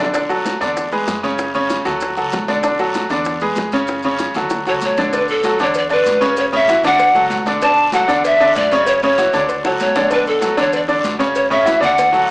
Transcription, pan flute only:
4.69 C#5
4.85 C#5
5.15 B4
5.30 A4
5.62 C#5
5.78 D5
5.92 B4
6.40 C#5
6.55 E5
6.86 F#5
7.63 A5
7.94 F#5
8.26 E5
8.56 D5
8.88 C#5
9.04 C#5
9.66 C#5
9.81 C#5
10.13 B4
10.28 A4
10.60 C#5
10.76 D5
11.37 C#5
11.51 E5
11.83 F#5

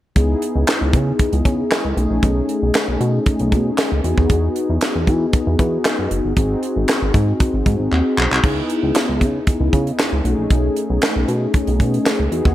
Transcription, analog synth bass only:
0.16 C#2
0.56 C#2
0.81 C#2
0.93 C#3
1.33 C#2
1.45 C#3
1.85 C#2
1.97 B1
2.10 A#1
2.23 B1
2.62 B1
2.88 B1
3.00 B2
3.40 B1
3.52 B2
3.92 C#2
4.04 E2
4.18 D#2
4.30 E2
4.70 E2
4.95 E2
5.07 E3
5.47 E2
5.59 E3
5.99 F#2
6.11 F#1
6.25 G1
6.37 G#1
6.76 G#1
7.02 G#1
7.14 G#2
7.54 G#1
7.66 G#2
7.80 G#1
7.92 D#2
8.18 B1
8.31 C2
8.44 C#2
8.83 C#2
9.09 C#2
9.21 C#3
9.60 C#2
9.73 C#3
10.12 C#2
10.25 B1
10.38 A#1
10.51 B1
10.90 B1
11.16 B1
11.28 B2
11.68 B1
11.80 B2
12.19 C#2
12.32 E2
12.45 D#2

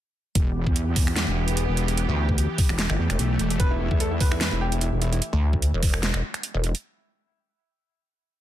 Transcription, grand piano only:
3.60 B4
3.71 E4
3.80 E4
3.91 E4
4.00 A4
4.11 E4
4.20 B4
4.32 E4
4.41 B4
4.52 E4
4.61 G4
4.72 E4
4.81 E4
5.01 E4
5.13 E4

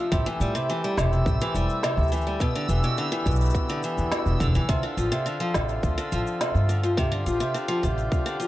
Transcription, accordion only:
Already playing: C3 A3
0.12 E4 G4
2.40 D3 B3
4.69 C4 F4 A4
6.97 G4

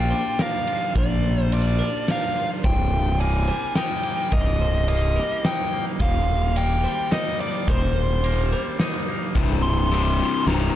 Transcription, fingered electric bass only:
Already playing: A#1
0.95 A#1
2.64 C1
4.33 C1
6.00 D#1
7.68 D#1
9.35 C1
10.47 C1

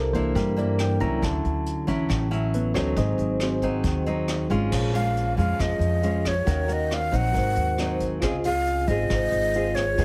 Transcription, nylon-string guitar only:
Already playing: C3 A#3 D4 E4
0.15 A#3 D4 E4
0.35 G3
0.56 A#3 D4 E4
1.00 F#3 C#4 E4
1.22 D3
1.87 F#3 C#4 E4
2.09 A2
2.31 F#3 C#4 E4
2.75 F#3 C4 D#4
2.97 G#2
3.63 F#3 C4 D#4
3.84 D#3
4.06 F#3 C4 D#4
4.50 G#3 C#4 F4
4.73 A#2
4.94 G#3 C#4 F4
5.37 G#3 C#4 F4
5.58 F3
6.03 G#3 C#4 F4
6.46 D#3 C#4 F#4 A#4
6.68 C#4 F#4 A#4
7.11 F#3 C4 D#4
7.34 G#2
7.79 F#3 C4 D#4
8.22 C#3 C4 F4 G#4
8.45 C4 F4 G#4
8.89 C4 F4 G#4
9.11 G#2
9.55 C4 F4 G#4
9.98 F3 B3 D#4 G#4

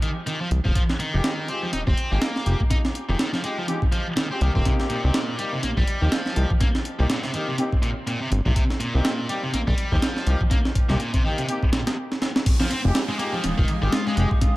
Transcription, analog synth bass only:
0.51 C2
0.65 D#1
1.14 F1
1.73 D#1
1.87 D#1
2.12 G#1
2.46 F1
3.09 F1
4.41 C2
4.55 D#1
5.04 C2
5.63 A#1
5.77 A#1
6.02 D#2
6.36 C2
6.99 C2
8.32 G1
8.46 A#1
8.95 C2
9.54 A#1
9.68 A#1
9.92 D#2
10.26 C2
10.90 C2
12.85 F1
13.44 D#1
13.58 D#1
13.82 G#1
14.17 F1

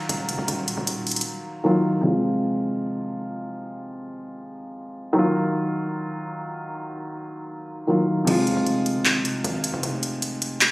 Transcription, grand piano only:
Already playing: D#3 F#3 A#3 F4
1.64 D#3 F#3 A#3 F4
2.01 C3 F3 G#3
2.07 F4
5.13 D#3 F#3 A#3
5.18 F4
7.87 D#3 F#3 A#3 F4
8.25 C3 F3 G#3
8.30 F4

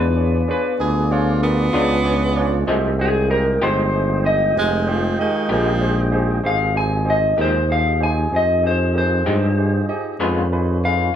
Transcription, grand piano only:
0.16 D4 F4 G#4 C#5
0.48 D4 F4 G#4 C#5
0.80 D4 F4 G#4 B4
1.11 D4 F4 G#4 C#5
1.42 D4 F4 G#4 A#4
1.74 D4 F4 G#4 C#5
2.04 D4 F4 G#4 C#5
2.36 D4 F4 G#4 C#5
2.67 D#4 G4 G#4 C5
2.99 D#4 G4 G#4 C5
3.30 D#4 G4 G#4 C5
3.62 D#4 G4 G#4 C5
3.94 D#4 G4 G#4 C5
4.24 D#4 G4 G#4 D#5
4.55 D#4 G4 G#4 C5
4.87 D#4 G4 G#4 C5
5.19 D#4 G4 G#4 D#5
5.50 D#4 G4 G#4 A#4
5.81 D#4 G4 G#4 C5
6.12 D#4 G4 G#4 C5
6.44 D#4 G4 G#4 C5
6.74 D#4 G4 G#4 C5
7.05 D#4 G4 G#4 C5
7.37 D#4 G4 G#4 A#4
7.69 D#4 G4 G#4 C5
8.00 D#4 G4 G#4 C5
8.31 D#4 G4 G#4 C5
8.63 D#4 G4 G#4 D#5
8.94 D#4 G4 G#4 A#4
9.26 D#4 G4 G#4 C5
9.58 D#4 G4 G#4 C5
9.89 D#4 G4 G#4 D#5
10.20 D#4 F4 G#4 B4
10.52 D#4 F4 G#4 B4
10.84 D#4 F4 G#4 B4

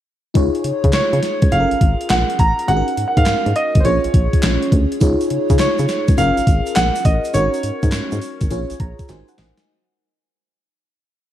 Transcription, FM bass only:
0.35 C#2
0.65 C#3
0.84 C#3
0.94 C#3
1.13 C#3
1.42 C#2
1.52 F#1
1.72 G#1
1.81 G#1
2.10 A#1
2.39 A1
2.68 G#1
2.98 G#2
3.17 G#2
3.27 G#2
3.46 G#2
3.76 G#1
3.85 A#1
4.05 A#1
4.14 A#1
4.44 A#1
4.72 D2
5.02 C#2
5.31 C#3
5.50 C#3
5.60 C#3
5.79 C#3
6.09 C#2
6.18 F#1
6.38 G#1
6.47 G#1
6.77 A#1
7.05 A1
7.35 G#1
7.64 G#2
7.83 G#2
7.93 G#2
8.12 G#2
8.41 G#1
8.51 A#1
8.71 A#1
8.80 A#1
9.10 G#1
9.39 A1

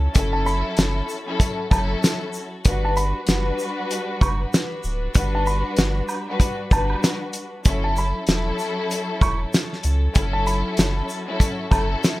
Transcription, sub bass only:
0.16 F#1
0.78 F#1
1.71 F#1
2.66 G1
3.28 F#1
4.21 F#1
4.84 D1
5.15 G1
5.78 G1
6.71 G1
7.66 F#1
8.28 E1
9.21 E1
9.84 C#2
10.16 F#1
10.78 F#1
11.71 F#1

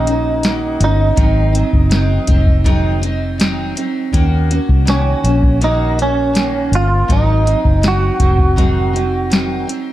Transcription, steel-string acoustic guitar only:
0.06 A#3 C#4 F#4
0.43 D#3 A#3 C#4 F#4
0.80 A#3 C#4 F#4
1.16 G#2 D#3 F#3 C4 D#4
1.53 F#3 C4 D#4
1.90 D#3 F#3 C4 D#4
2.27 F#3 C4 D#4
2.64 G#2 D#3 F#3 C4 D#4
3.01 F#3 C4 D#4
3.38 D#3 F#3 C4 D#4
3.75 F#3 C4 D#4
4.13 D#3 A#3 C#4 F#4
4.50 A#3 C#4 F#4
4.85 D#3 A#3 C#4 F#4
5.24 A#3 C#4 F#4
5.61 D#3 A#3 C#4 F#4
5.98 C#4 F#4
6.02 A#3
6.34 D#3 A#3 C#4 F#4
6.73 A#3 C#4
7.08 G#2 D#3 F#3 C4 D#4
7.46 F#3 C4 D#4
7.81 D#3 F#3 C4 D#4
8.19 F#3 C4 D#4
8.56 G#2 D#3 F#3 C4 D#4
8.93 F#3 C4 D#4
9.30 D#3 F#3 C4 D#4
9.67 F#3 C4 D#4

